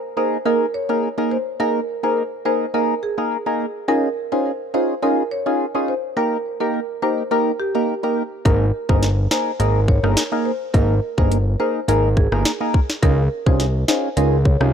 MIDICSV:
0, 0, Header, 1, 5, 480
1, 0, Start_track
1, 0, Key_signature, -4, "major"
1, 0, Tempo, 571429
1, 1343, Time_signature, 4, 2, 24, 8
1, 12374, End_track
2, 0, Start_track
2, 0, Title_t, "Marimba"
2, 0, Program_c, 0, 12
2, 144, Note_on_c, 0, 72, 82
2, 257, Note_off_c, 0, 72, 0
2, 384, Note_on_c, 0, 70, 94
2, 496, Note_off_c, 0, 70, 0
2, 624, Note_on_c, 0, 73, 84
2, 737, Note_off_c, 0, 73, 0
2, 1105, Note_on_c, 0, 72, 82
2, 1217, Note_off_c, 0, 72, 0
2, 1343, Note_on_c, 0, 70, 106
2, 1456, Note_off_c, 0, 70, 0
2, 1711, Note_on_c, 0, 72, 76
2, 1811, Note_off_c, 0, 72, 0
2, 2063, Note_on_c, 0, 72, 87
2, 2176, Note_off_c, 0, 72, 0
2, 2304, Note_on_c, 0, 70, 87
2, 2417, Note_off_c, 0, 70, 0
2, 2544, Note_on_c, 0, 68, 80
2, 2656, Note_off_c, 0, 68, 0
2, 3264, Note_on_c, 0, 70, 109
2, 3376, Note_off_c, 0, 70, 0
2, 3630, Note_on_c, 0, 72, 84
2, 3731, Note_off_c, 0, 72, 0
2, 3983, Note_on_c, 0, 72, 80
2, 4096, Note_off_c, 0, 72, 0
2, 4223, Note_on_c, 0, 70, 91
2, 4336, Note_off_c, 0, 70, 0
2, 4464, Note_on_c, 0, 73, 84
2, 4577, Note_off_c, 0, 73, 0
2, 4943, Note_on_c, 0, 72, 79
2, 5056, Note_off_c, 0, 72, 0
2, 5181, Note_on_c, 0, 70, 106
2, 5295, Note_off_c, 0, 70, 0
2, 5549, Note_on_c, 0, 70, 73
2, 5650, Note_off_c, 0, 70, 0
2, 5901, Note_on_c, 0, 72, 85
2, 6015, Note_off_c, 0, 72, 0
2, 6142, Note_on_c, 0, 70, 85
2, 6255, Note_off_c, 0, 70, 0
2, 6380, Note_on_c, 0, 67, 82
2, 6495, Note_off_c, 0, 67, 0
2, 7099, Note_on_c, 0, 70, 106
2, 7214, Note_off_c, 0, 70, 0
2, 7468, Note_on_c, 0, 72, 87
2, 7569, Note_off_c, 0, 72, 0
2, 7821, Note_on_c, 0, 72, 83
2, 7935, Note_off_c, 0, 72, 0
2, 8061, Note_on_c, 0, 70, 89
2, 8175, Note_off_c, 0, 70, 0
2, 8302, Note_on_c, 0, 73, 83
2, 8415, Note_off_c, 0, 73, 0
2, 8782, Note_on_c, 0, 72, 80
2, 8895, Note_off_c, 0, 72, 0
2, 9019, Note_on_c, 0, 70, 104
2, 9134, Note_off_c, 0, 70, 0
2, 9389, Note_on_c, 0, 72, 74
2, 9490, Note_off_c, 0, 72, 0
2, 9742, Note_on_c, 0, 72, 83
2, 9855, Note_off_c, 0, 72, 0
2, 9981, Note_on_c, 0, 70, 91
2, 10095, Note_off_c, 0, 70, 0
2, 10222, Note_on_c, 0, 68, 84
2, 10335, Note_off_c, 0, 68, 0
2, 10941, Note_on_c, 0, 70, 110
2, 11055, Note_off_c, 0, 70, 0
2, 11309, Note_on_c, 0, 72, 83
2, 11410, Note_off_c, 0, 72, 0
2, 11663, Note_on_c, 0, 72, 83
2, 11776, Note_off_c, 0, 72, 0
2, 11902, Note_on_c, 0, 70, 91
2, 12015, Note_off_c, 0, 70, 0
2, 12140, Note_on_c, 0, 73, 82
2, 12254, Note_off_c, 0, 73, 0
2, 12374, End_track
3, 0, Start_track
3, 0, Title_t, "Synth stab"
3, 0, Program_c, 1, 62
3, 141, Note_on_c, 1, 58, 82
3, 143, Note_on_c, 1, 63, 73
3, 145, Note_on_c, 1, 68, 75
3, 146, Note_on_c, 1, 70, 85
3, 313, Note_off_c, 1, 58, 0
3, 313, Note_off_c, 1, 63, 0
3, 315, Note_off_c, 1, 68, 0
3, 316, Note_off_c, 1, 70, 0
3, 381, Note_on_c, 1, 58, 92
3, 383, Note_on_c, 1, 63, 84
3, 385, Note_on_c, 1, 68, 90
3, 386, Note_on_c, 1, 70, 105
3, 553, Note_off_c, 1, 58, 0
3, 554, Note_off_c, 1, 63, 0
3, 555, Note_off_c, 1, 68, 0
3, 555, Note_off_c, 1, 70, 0
3, 749, Note_on_c, 1, 58, 78
3, 750, Note_on_c, 1, 63, 70
3, 752, Note_on_c, 1, 68, 75
3, 754, Note_on_c, 1, 70, 87
3, 911, Note_off_c, 1, 58, 0
3, 912, Note_off_c, 1, 63, 0
3, 913, Note_off_c, 1, 68, 0
3, 914, Note_off_c, 1, 70, 0
3, 988, Note_on_c, 1, 58, 80
3, 990, Note_on_c, 1, 63, 75
3, 992, Note_on_c, 1, 68, 73
3, 993, Note_on_c, 1, 70, 89
3, 1151, Note_off_c, 1, 58, 0
3, 1152, Note_off_c, 1, 63, 0
3, 1153, Note_off_c, 1, 68, 0
3, 1154, Note_off_c, 1, 70, 0
3, 1341, Note_on_c, 1, 58, 92
3, 1343, Note_on_c, 1, 63, 86
3, 1345, Note_on_c, 1, 68, 86
3, 1346, Note_on_c, 1, 70, 106
3, 1513, Note_off_c, 1, 58, 0
3, 1514, Note_off_c, 1, 63, 0
3, 1515, Note_off_c, 1, 68, 0
3, 1515, Note_off_c, 1, 70, 0
3, 1707, Note_on_c, 1, 58, 78
3, 1709, Note_on_c, 1, 63, 71
3, 1711, Note_on_c, 1, 68, 70
3, 1713, Note_on_c, 1, 70, 88
3, 1871, Note_off_c, 1, 58, 0
3, 1872, Note_off_c, 1, 63, 0
3, 1872, Note_off_c, 1, 68, 0
3, 1873, Note_off_c, 1, 70, 0
3, 2060, Note_on_c, 1, 58, 80
3, 2062, Note_on_c, 1, 63, 75
3, 2063, Note_on_c, 1, 68, 73
3, 2065, Note_on_c, 1, 70, 88
3, 2232, Note_off_c, 1, 58, 0
3, 2233, Note_off_c, 1, 63, 0
3, 2234, Note_off_c, 1, 68, 0
3, 2235, Note_off_c, 1, 70, 0
3, 2301, Note_on_c, 1, 58, 99
3, 2302, Note_on_c, 1, 63, 86
3, 2303, Note_on_c, 1, 68, 87
3, 2305, Note_on_c, 1, 70, 100
3, 2472, Note_off_c, 1, 58, 0
3, 2473, Note_off_c, 1, 63, 0
3, 2474, Note_off_c, 1, 68, 0
3, 2475, Note_off_c, 1, 70, 0
3, 2669, Note_on_c, 1, 58, 80
3, 2671, Note_on_c, 1, 63, 73
3, 2672, Note_on_c, 1, 68, 73
3, 2674, Note_on_c, 1, 70, 86
3, 2831, Note_off_c, 1, 58, 0
3, 2832, Note_off_c, 1, 63, 0
3, 2833, Note_off_c, 1, 68, 0
3, 2834, Note_off_c, 1, 70, 0
3, 2908, Note_on_c, 1, 58, 78
3, 2909, Note_on_c, 1, 63, 75
3, 2911, Note_on_c, 1, 68, 74
3, 2913, Note_on_c, 1, 70, 85
3, 3071, Note_off_c, 1, 58, 0
3, 3072, Note_off_c, 1, 63, 0
3, 3072, Note_off_c, 1, 68, 0
3, 3073, Note_off_c, 1, 70, 0
3, 3260, Note_on_c, 1, 61, 93
3, 3262, Note_on_c, 1, 63, 85
3, 3263, Note_on_c, 1, 65, 86
3, 3265, Note_on_c, 1, 68, 103
3, 3432, Note_off_c, 1, 61, 0
3, 3433, Note_off_c, 1, 63, 0
3, 3434, Note_off_c, 1, 65, 0
3, 3435, Note_off_c, 1, 68, 0
3, 3628, Note_on_c, 1, 61, 76
3, 3630, Note_on_c, 1, 63, 70
3, 3632, Note_on_c, 1, 65, 71
3, 3634, Note_on_c, 1, 68, 82
3, 3791, Note_off_c, 1, 61, 0
3, 3792, Note_off_c, 1, 63, 0
3, 3793, Note_off_c, 1, 65, 0
3, 3794, Note_off_c, 1, 68, 0
3, 3980, Note_on_c, 1, 61, 80
3, 3982, Note_on_c, 1, 63, 76
3, 3984, Note_on_c, 1, 65, 76
3, 3986, Note_on_c, 1, 68, 91
3, 4152, Note_off_c, 1, 61, 0
3, 4153, Note_off_c, 1, 63, 0
3, 4154, Note_off_c, 1, 65, 0
3, 4155, Note_off_c, 1, 68, 0
3, 4220, Note_on_c, 1, 61, 92
3, 4222, Note_on_c, 1, 63, 84
3, 4223, Note_on_c, 1, 65, 88
3, 4225, Note_on_c, 1, 68, 107
3, 4392, Note_off_c, 1, 61, 0
3, 4393, Note_off_c, 1, 63, 0
3, 4394, Note_off_c, 1, 65, 0
3, 4395, Note_off_c, 1, 68, 0
3, 4587, Note_on_c, 1, 61, 81
3, 4588, Note_on_c, 1, 63, 74
3, 4590, Note_on_c, 1, 65, 73
3, 4592, Note_on_c, 1, 68, 93
3, 4750, Note_off_c, 1, 61, 0
3, 4751, Note_off_c, 1, 63, 0
3, 4752, Note_off_c, 1, 65, 0
3, 4753, Note_off_c, 1, 68, 0
3, 4827, Note_on_c, 1, 61, 83
3, 4829, Note_on_c, 1, 63, 73
3, 4830, Note_on_c, 1, 65, 77
3, 4832, Note_on_c, 1, 68, 91
3, 4990, Note_off_c, 1, 61, 0
3, 4991, Note_off_c, 1, 63, 0
3, 4992, Note_off_c, 1, 65, 0
3, 4993, Note_off_c, 1, 68, 0
3, 5179, Note_on_c, 1, 58, 92
3, 5181, Note_on_c, 1, 63, 84
3, 5182, Note_on_c, 1, 67, 90
3, 5184, Note_on_c, 1, 70, 101
3, 5352, Note_off_c, 1, 58, 0
3, 5353, Note_off_c, 1, 63, 0
3, 5353, Note_off_c, 1, 67, 0
3, 5354, Note_off_c, 1, 70, 0
3, 5546, Note_on_c, 1, 58, 76
3, 5548, Note_on_c, 1, 63, 73
3, 5550, Note_on_c, 1, 67, 75
3, 5551, Note_on_c, 1, 70, 88
3, 5710, Note_off_c, 1, 58, 0
3, 5711, Note_off_c, 1, 63, 0
3, 5712, Note_off_c, 1, 67, 0
3, 5713, Note_off_c, 1, 70, 0
3, 5899, Note_on_c, 1, 58, 79
3, 5901, Note_on_c, 1, 63, 72
3, 5903, Note_on_c, 1, 67, 72
3, 5904, Note_on_c, 1, 70, 88
3, 6072, Note_off_c, 1, 58, 0
3, 6073, Note_off_c, 1, 63, 0
3, 6074, Note_off_c, 1, 67, 0
3, 6074, Note_off_c, 1, 70, 0
3, 6140, Note_on_c, 1, 58, 91
3, 6142, Note_on_c, 1, 63, 84
3, 6144, Note_on_c, 1, 67, 88
3, 6145, Note_on_c, 1, 70, 110
3, 6312, Note_off_c, 1, 58, 0
3, 6313, Note_off_c, 1, 63, 0
3, 6314, Note_off_c, 1, 67, 0
3, 6315, Note_off_c, 1, 70, 0
3, 6507, Note_on_c, 1, 58, 79
3, 6509, Note_on_c, 1, 63, 75
3, 6510, Note_on_c, 1, 67, 75
3, 6512, Note_on_c, 1, 70, 89
3, 6671, Note_off_c, 1, 58, 0
3, 6671, Note_off_c, 1, 63, 0
3, 6672, Note_off_c, 1, 67, 0
3, 6673, Note_off_c, 1, 70, 0
3, 6747, Note_on_c, 1, 58, 77
3, 6748, Note_on_c, 1, 63, 73
3, 6750, Note_on_c, 1, 67, 75
3, 6752, Note_on_c, 1, 70, 89
3, 6911, Note_off_c, 1, 58, 0
3, 6911, Note_off_c, 1, 63, 0
3, 6912, Note_off_c, 1, 67, 0
3, 6913, Note_off_c, 1, 70, 0
3, 7099, Note_on_c, 1, 58, 92
3, 7101, Note_on_c, 1, 63, 88
3, 7102, Note_on_c, 1, 68, 89
3, 7104, Note_on_c, 1, 70, 103
3, 7272, Note_off_c, 1, 58, 0
3, 7273, Note_off_c, 1, 63, 0
3, 7273, Note_off_c, 1, 68, 0
3, 7274, Note_off_c, 1, 70, 0
3, 7466, Note_on_c, 1, 58, 77
3, 7469, Note_on_c, 1, 63, 72
3, 7470, Note_on_c, 1, 68, 69
3, 7471, Note_on_c, 1, 70, 85
3, 7630, Note_off_c, 1, 58, 0
3, 7631, Note_off_c, 1, 63, 0
3, 7632, Note_off_c, 1, 68, 0
3, 7633, Note_off_c, 1, 70, 0
3, 7820, Note_on_c, 1, 58, 77
3, 7821, Note_on_c, 1, 63, 75
3, 7823, Note_on_c, 1, 68, 73
3, 7825, Note_on_c, 1, 70, 88
3, 7992, Note_off_c, 1, 58, 0
3, 7993, Note_off_c, 1, 63, 0
3, 7994, Note_off_c, 1, 68, 0
3, 7995, Note_off_c, 1, 70, 0
3, 8060, Note_on_c, 1, 58, 96
3, 8062, Note_on_c, 1, 63, 85
3, 8064, Note_on_c, 1, 68, 87
3, 8066, Note_on_c, 1, 70, 104
3, 8232, Note_off_c, 1, 58, 0
3, 8233, Note_off_c, 1, 63, 0
3, 8234, Note_off_c, 1, 68, 0
3, 8235, Note_off_c, 1, 70, 0
3, 8428, Note_on_c, 1, 58, 78
3, 8429, Note_on_c, 1, 63, 74
3, 8431, Note_on_c, 1, 68, 74
3, 8433, Note_on_c, 1, 70, 89
3, 8591, Note_off_c, 1, 58, 0
3, 8591, Note_off_c, 1, 63, 0
3, 8592, Note_off_c, 1, 68, 0
3, 8593, Note_off_c, 1, 70, 0
3, 8667, Note_on_c, 1, 58, 82
3, 8669, Note_on_c, 1, 63, 73
3, 8670, Note_on_c, 1, 68, 75
3, 8672, Note_on_c, 1, 70, 90
3, 8830, Note_off_c, 1, 58, 0
3, 8832, Note_off_c, 1, 63, 0
3, 8832, Note_off_c, 1, 68, 0
3, 8833, Note_off_c, 1, 70, 0
3, 9020, Note_on_c, 1, 58, 91
3, 9021, Note_on_c, 1, 63, 87
3, 9023, Note_on_c, 1, 68, 85
3, 9025, Note_on_c, 1, 70, 104
3, 9192, Note_off_c, 1, 58, 0
3, 9193, Note_off_c, 1, 63, 0
3, 9194, Note_off_c, 1, 68, 0
3, 9195, Note_off_c, 1, 70, 0
3, 9388, Note_on_c, 1, 58, 78
3, 9390, Note_on_c, 1, 63, 73
3, 9392, Note_on_c, 1, 68, 73
3, 9393, Note_on_c, 1, 70, 88
3, 9551, Note_off_c, 1, 58, 0
3, 9552, Note_off_c, 1, 63, 0
3, 9553, Note_off_c, 1, 68, 0
3, 9554, Note_off_c, 1, 70, 0
3, 9741, Note_on_c, 1, 58, 79
3, 9742, Note_on_c, 1, 63, 73
3, 9744, Note_on_c, 1, 68, 74
3, 9746, Note_on_c, 1, 70, 90
3, 9913, Note_off_c, 1, 58, 0
3, 9913, Note_off_c, 1, 63, 0
3, 9914, Note_off_c, 1, 68, 0
3, 9915, Note_off_c, 1, 70, 0
3, 9981, Note_on_c, 1, 58, 96
3, 9983, Note_on_c, 1, 63, 83
3, 9985, Note_on_c, 1, 68, 88
3, 9986, Note_on_c, 1, 70, 105
3, 10153, Note_off_c, 1, 58, 0
3, 10154, Note_off_c, 1, 63, 0
3, 10155, Note_off_c, 1, 68, 0
3, 10155, Note_off_c, 1, 70, 0
3, 10349, Note_on_c, 1, 58, 79
3, 10350, Note_on_c, 1, 63, 70
3, 10352, Note_on_c, 1, 68, 73
3, 10354, Note_on_c, 1, 70, 88
3, 10511, Note_off_c, 1, 58, 0
3, 10512, Note_off_c, 1, 63, 0
3, 10513, Note_off_c, 1, 68, 0
3, 10514, Note_off_c, 1, 70, 0
3, 10588, Note_on_c, 1, 58, 82
3, 10590, Note_on_c, 1, 63, 75
3, 10591, Note_on_c, 1, 68, 74
3, 10593, Note_on_c, 1, 70, 89
3, 10751, Note_off_c, 1, 58, 0
3, 10752, Note_off_c, 1, 63, 0
3, 10753, Note_off_c, 1, 68, 0
3, 10753, Note_off_c, 1, 70, 0
3, 10941, Note_on_c, 1, 61, 96
3, 10943, Note_on_c, 1, 63, 84
3, 10945, Note_on_c, 1, 65, 87
3, 10947, Note_on_c, 1, 68, 106
3, 11113, Note_off_c, 1, 61, 0
3, 11114, Note_off_c, 1, 63, 0
3, 11115, Note_off_c, 1, 65, 0
3, 11116, Note_off_c, 1, 68, 0
3, 11308, Note_on_c, 1, 61, 81
3, 11310, Note_on_c, 1, 63, 71
3, 11311, Note_on_c, 1, 65, 69
3, 11313, Note_on_c, 1, 68, 89
3, 11471, Note_off_c, 1, 61, 0
3, 11472, Note_off_c, 1, 63, 0
3, 11473, Note_off_c, 1, 65, 0
3, 11474, Note_off_c, 1, 68, 0
3, 11660, Note_on_c, 1, 61, 84
3, 11662, Note_on_c, 1, 63, 74
3, 11663, Note_on_c, 1, 65, 74
3, 11665, Note_on_c, 1, 68, 93
3, 11832, Note_off_c, 1, 61, 0
3, 11833, Note_off_c, 1, 63, 0
3, 11834, Note_off_c, 1, 65, 0
3, 11835, Note_off_c, 1, 68, 0
3, 11900, Note_on_c, 1, 61, 95
3, 11902, Note_on_c, 1, 63, 84
3, 11904, Note_on_c, 1, 65, 86
3, 11905, Note_on_c, 1, 68, 108
3, 12072, Note_off_c, 1, 61, 0
3, 12073, Note_off_c, 1, 63, 0
3, 12074, Note_off_c, 1, 65, 0
3, 12075, Note_off_c, 1, 68, 0
3, 12267, Note_on_c, 1, 61, 81
3, 12269, Note_on_c, 1, 63, 73
3, 12271, Note_on_c, 1, 65, 74
3, 12273, Note_on_c, 1, 68, 90
3, 12374, Note_off_c, 1, 61, 0
3, 12374, Note_off_c, 1, 63, 0
3, 12374, Note_off_c, 1, 65, 0
3, 12374, Note_off_c, 1, 68, 0
3, 12374, End_track
4, 0, Start_track
4, 0, Title_t, "Analog synth bass"
4, 0, Program_c, 2, 38
4, 7103, Note_on_c, 2, 32, 119
4, 7321, Note_off_c, 2, 32, 0
4, 7470, Note_on_c, 2, 31, 89
4, 7791, Note_off_c, 2, 31, 0
4, 8062, Note_on_c, 2, 32, 97
4, 8397, Note_off_c, 2, 32, 0
4, 8429, Note_on_c, 2, 31, 91
4, 8532, Note_off_c, 2, 31, 0
4, 9023, Note_on_c, 2, 32, 110
4, 9241, Note_off_c, 2, 32, 0
4, 9391, Note_on_c, 2, 31, 75
4, 9712, Note_off_c, 2, 31, 0
4, 9981, Note_on_c, 2, 32, 98
4, 10316, Note_off_c, 2, 32, 0
4, 10349, Note_on_c, 2, 31, 94
4, 10452, Note_off_c, 2, 31, 0
4, 10943, Note_on_c, 2, 37, 123
4, 11162, Note_off_c, 2, 37, 0
4, 11311, Note_on_c, 2, 36, 87
4, 11632, Note_off_c, 2, 36, 0
4, 11902, Note_on_c, 2, 37, 95
4, 12237, Note_off_c, 2, 37, 0
4, 12269, Note_on_c, 2, 36, 99
4, 12373, Note_off_c, 2, 36, 0
4, 12374, End_track
5, 0, Start_track
5, 0, Title_t, "Drums"
5, 7102, Note_on_c, 9, 36, 111
5, 7102, Note_on_c, 9, 42, 66
5, 7186, Note_off_c, 9, 36, 0
5, 7186, Note_off_c, 9, 42, 0
5, 7470, Note_on_c, 9, 36, 101
5, 7554, Note_off_c, 9, 36, 0
5, 7582, Note_on_c, 9, 38, 74
5, 7584, Note_on_c, 9, 42, 70
5, 7666, Note_off_c, 9, 38, 0
5, 7668, Note_off_c, 9, 42, 0
5, 7822, Note_on_c, 9, 38, 116
5, 7906, Note_off_c, 9, 38, 0
5, 8062, Note_on_c, 9, 42, 78
5, 8146, Note_off_c, 9, 42, 0
5, 8301, Note_on_c, 9, 36, 91
5, 8385, Note_off_c, 9, 36, 0
5, 8432, Note_on_c, 9, 37, 95
5, 8516, Note_off_c, 9, 37, 0
5, 8542, Note_on_c, 9, 38, 113
5, 8544, Note_on_c, 9, 42, 72
5, 8626, Note_off_c, 9, 38, 0
5, 8628, Note_off_c, 9, 42, 0
5, 9023, Note_on_c, 9, 36, 115
5, 9024, Note_on_c, 9, 42, 68
5, 9107, Note_off_c, 9, 36, 0
5, 9108, Note_off_c, 9, 42, 0
5, 9391, Note_on_c, 9, 36, 100
5, 9475, Note_off_c, 9, 36, 0
5, 9505, Note_on_c, 9, 42, 72
5, 9589, Note_off_c, 9, 42, 0
5, 9983, Note_on_c, 9, 42, 80
5, 10067, Note_off_c, 9, 42, 0
5, 10222, Note_on_c, 9, 36, 88
5, 10306, Note_off_c, 9, 36, 0
5, 10351, Note_on_c, 9, 37, 90
5, 10435, Note_off_c, 9, 37, 0
5, 10462, Note_on_c, 9, 38, 112
5, 10464, Note_on_c, 9, 42, 72
5, 10546, Note_off_c, 9, 38, 0
5, 10548, Note_off_c, 9, 42, 0
5, 10704, Note_on_c, 9, 36, 100
5, 10788, Note_off_c, 9, 36, 0
5, 10833, Note_on_c, 9, 38, 69
5, 10917, Note_off_c, 9, 38, 0
5, 10943, Note_on_c, 9, 36, 115
5, 10943, Note_on_c, 9, 42, 69
5, 11027, Note_off_c, 9, 36, 0
5, 11027, Note_off_c, 9, 42, 0
5, 11311, Note_on_c, 9, 36, 101
5, 11395, Note_off_c, 9, 36, 0
5, 11422, Note_on_c, 9, 38, 78
5, 11424, Note_on_c, 9, 42, 71
5, 11506, Note_off_c, 9, 38, 0
5, 11508, Note_off_c, 9, 42, 0
5, 11663, Note_on_c, 9, 38, 118
5, 11747, Note_off_c, 9, 38, 0
5, 11902, Note_on_c, 9, 42, 78
5, 11986, Note_off_c, 9, 42, 0
5, 12142, Note_on_c, 9, 36, 92
5, 12226, Note_off_c, 9, 36, 0
5, 12271, Note_on_c, 9, 37, 96
5, 12355, Note_off_c, 9, 37, 0
5, 12374, End_track
0, 0, End_of_file